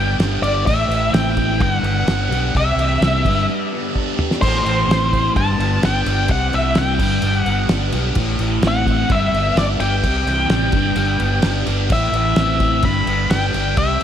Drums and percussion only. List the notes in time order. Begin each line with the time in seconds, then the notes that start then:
0.20 snare, crash
0.44 crash
0.67 kick, crash
0.91 crash
1.14 snare, crash
1.37 kick, crash
1.60 kick, crash
1.84 crash
2.07 snare, crash
2.32 crash
2.55 kick, crash
2.79 crash
3.02 snare, crash
3.25 kick, crash
3.96 kick
4.19 mid tom
4.31 snare
4.42 kick, crash
4.66 crash
4.91 snare, crash
5.13 kick, crash
5.36 kick, crash
5.60 crash
5.83 snare, crash
6.06 crash
6.28 kick, crash
6.53 crash
6.75 snare, crash
6.99 kick, crash
7.22 crash
7.46 crash
7.69 snare, crash
7.92 crash
8.15 kick, crash
8.39 crash
8.62 snare, crash
8.87 kick, crash
9.10 kick, crash
9.34 crash
9.57 snare, crash
9.80 crash
10.04 kick, crash
10.27 crash
10.49 snare, crash
10.72 kick, crash
10.96 crash
11.20 crash
11.42 snare, crash
11.66 crash
11.90 kick, crash
12.13 crash
12.36 snare, crash
12.60 kick, crash
12.82 kick, crash
13.07 crash
13.30 snare, crash
13.54 crash
13.77 kick, crash